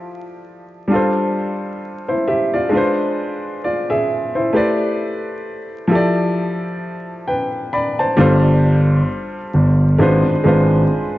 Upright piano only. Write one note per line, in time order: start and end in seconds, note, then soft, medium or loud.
0.00 0.84 F3 medium
0.00 0.85 E4 medium
0.00 0.86 G4 medium
0.00 0.87 A4 medium
0.00 0.88 D5 medium
0.88 2.67 G3 medium
0.88 2.68 D4 medium
0.88 1.35 F4 medium
0.93 1.36 A4 medium
0.93 1.37 C5 medium
2.08 2.26 E4 soft
2.08 2.26 C5 medium
2.28 2.52 G4 medium
2.28 2.51 E5 medium
2.54 2.72 F4 soft
2.54 2.96 D5 medium
2.69 4.48 G#3 medium
2.69 4.49 D4 medium
2.69 3.61 F4 medium
2.75 3.62 B4 medium
2.75 3.63 C5 medium
3.64 3.88 F4 soft
3.64 3.88 D5 medium
3.90 4.33 G#4 medium
3.90 4.32 E5 medium
4.35 4.52 E4 soft
4.35 4.54 C5 medium
4.53 5.89 A3 medium
4.53 5.88 E4 medium
4.53 5.90 G4 medium
4.53 5.90 B4 medium
4.53 5.91 C5 medium
4.53 5.91 D5 medium
5.87 8.12 F3 medium
5.87 8.13 E4 medium
5.87 8.14 G4 medium
5.93 8.15 A4 medium
5.93 7.26 D5 medium
7.28 7.70 B4 medium
7.28 7.70 G5 medium
7.73 7.97 D5 medium
7.73 7.97 B5 medium
7.99 8.19 C5 medium
7.99 8.42 A5 medium
8.17 9.35 G3 medium
8.17 9.35 D4 medium
8.17 9.36 F4 medium
8.17 9.36 A4 medium
8.17 9.37 C5 medium
9.98 10.36 G#3 medium
9.98 10.37 D4 medium
9.98 10.37 F4 medium
9.98 10.38 B4 medium
9.98 10.38 C5 medium
10.44 11.18 G#3 medium
10.44 11.18 D4 medium
10.44 11.18 F4 medium
10.44 11.18 B4 medium
10.48 11.18 C5 medium